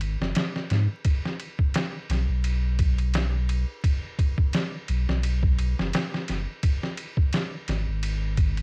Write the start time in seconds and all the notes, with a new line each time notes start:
Already playing: G#1
0.01 ride
0.20 F#1, snare
0.35 snare, ride
0.56 snare
0.70 G#2, snare, ride
1.05 kick, ride
1.25 snare
1.40 ride
1.59 kick
1.74 snare, ride
2.10 B1, snare, ride
2.28 B1
2.44 ride
2.79 kick, ride
2.98 ride
3.14 snare, ride
3.49 ride
3.84 kick, ride
4.19 kick, ride
4.38 kick
4.53 snare, ride
4.88 B1, ride
5.08 B1, snare
5.23 ride
5.43 kick
5.59 ride
5.79 F#1, snare
5.93 snare, ride
6.14 snare
6.28 F#1, snare, ride
6.63 kick, ride
6.83 snare
6.97 ride
7.17 kick
7.33 snare, ride
7.68 G#1, snare, ride
7.87 G#1
8.03 ride
8.37 kick, ride
8.57 ride